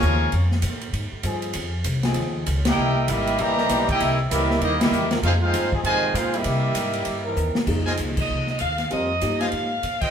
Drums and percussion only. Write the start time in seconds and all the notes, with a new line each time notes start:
0.02 hi-hat pedal
0.32 ride
0.51 snare
0.62 hi-hat pedal, ride
0.81 ride
0.93 ride
1.23 hi-hat pedal, ride
1.42 ride
1.53 ride
1.84 hi-hat pedal, ride
2.03 snare, ride
2.14 ride
2.46 hi-hat pedal, ride
2.65 snare, ride
3.08 hi-hat pedal, ride
3.27 ride
3.38 ride
3.58 snare
3.69 snare, hi-hat pedal, ride
3.89 kick, ride
4.00 ride
4.31 hi-hat pedal, ride
4.51 snare
4.61 ride
4.81 snare, ride
4.93 hi-hat pedal
5.11 snare, ride
5.23 ride
5.54 hi-hat pedal, ride
5.72 kick
5.84 ride
6.15 hi-hat pedal, ride
6.34 ride
6.44 ride
6.75 hi-hat pedal, ride
6.93 ride
7.05 ride
7.36 hi-hat pedal
7.55 snare
7.67 kick, crash
7.86 snare
7.97 hi-hat pedal, ride
8.17 kick, crash
8.47 snare
8.59 hi-hat pedal, ride
8.78 snare, ride
8.91 ride
9.21 hi-hat pedal, ride
9.41 snare, ride
9.52 ride
9.83 hi-hat pedal, ride
10.01 kick, crash